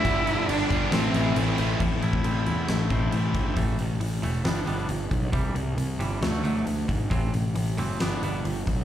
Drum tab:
CC |x-x-x-x-x-x-x-x-|x-x-x-x-x-x-x-x-|----------------|----------------|
HH |----------------|----------------|o-o-o-o-o-o-o-o-|o-o-o-o-o-o-o-o-|
SD |--------o-------|--------o-------|--------o-------|--------o-------|
BD |o-----o---------|o--o------o---o-|o-------------o-|o-------------o-|

CC |----------------|
HH |o-o-o-o-o-o-o-o-|
SD |--------o-------|
BD |o-------------o-|